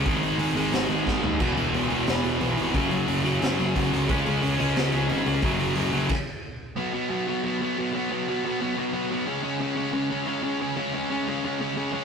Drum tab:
CC |--------|x-------|--------|--------|
HH |oooooo--|-ooooooo|oooooooo|oooooooo|
SD |----o-o-|----o---|----o---|----o---|
FT |-------o|--------|--------|--------|
BD |o-----o-|o-------|o-----o-|o-------|

CC |----x---|--------|--------|--------|
HH |oooo----|--------|--------|--------|
SD |--------|--------|--------|--------|
FT |--------|--------|--------|--------|
BD |o---o---|--------|--------|--------|

CC |--------|
HH |--------|
SD |--------|
FT |--------|
BD |--------|